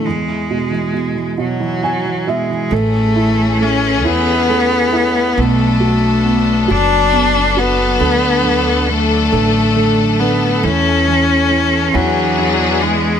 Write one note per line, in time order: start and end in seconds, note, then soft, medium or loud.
0.06 2.68 E2 medium
0.06 1.38 G#3 medium
0.29 0.69 E3 soft
0.50 0.92 B2 soft
0.71 1.13 E3 soft
0.93 1.36 B2 soft
1.15 1.59 E3 soft
1.38 1.81 B2 medium
1.38 2.30 F#3 medium
1.60 2.04 E3 soft
1.83 2.26 B2 soft
1.83 2.24 G#5 medium
2.05 2.48 E3 soft
2.27 2.70 B2 soft
2.27 2.75 G#3 medium
2.27 2.69 E5 medium
2.49 2.71 E3 soft
2.71 4.05 A1 medium
2.71 5.35 E3 medium
2.71 3.59 A3 medium
2.71 5.35 A3 medium
2.71 3.64 A3 medium
2.71 5.35 C#4 medium
2.71 5.35 G#4 medium
3.16 4.03 E4 medium
3.60 4.47 A3 soft
3.60 4.07 C#4 medium
4.04 5.33 E2 medium
4.04 5.41 B3 medium
4.04 4.91 E4 medium
4.49 5.35 A3 medium
4.92 5.36 E4 medium
5.37 6.65 B1 medium
5.37 10.59 F#3 medium
5.37 6.73 A3 loud
5.37 6.23 B3 medium
5.37 7.98 B3 medium
5.37 10.58 D4 medium
5.37 11.90 A4 medium
5.80 6.66 F#4 medium
6.24 7.11 B3 soft
6.68 7.97 F#1 medium
6.68 7.60 D4 loud
6.68 7.55 F#4 medium
7.12 7.97 B3 medium
7.56 8.90 B3 medium
7.56 7.99 F#4 medium
7.99 9.27 D2 loud
7.99 8.43 D3 medium
7.99 11.90 A3 medium
8.44 8.87 D3 medium
8.88 9.30 D3 soft
8.88 10.21 A3 loud
9.32 10.59 A1 medium
9.32 9.75 D3 medium
9.76 10.19 D3 medium
10.19 10.62 D3 medium
10.19 10.65 B3 medium
10.63 11.90 E2 medium
10.63 13.20 E3 medium
10.63 11.06 E3 medium
10.63 11.95 C#4 loud
10.63 11.93 C#4 medium
11.08 11.49 E3 soft
11.51 11.93 E3 soft
11.94 13.20 E2 medium
11.94 12.37 E3 medium
11.94 12.83 F#3 medium
11.94 13.20 B3 medium
11.94 13.20 D4 medium
11.94 13.20 G#4 loud
12.39 12.81 E3 medium
12.82 13.20 E3 soft
12.82 13.20 G#3 medium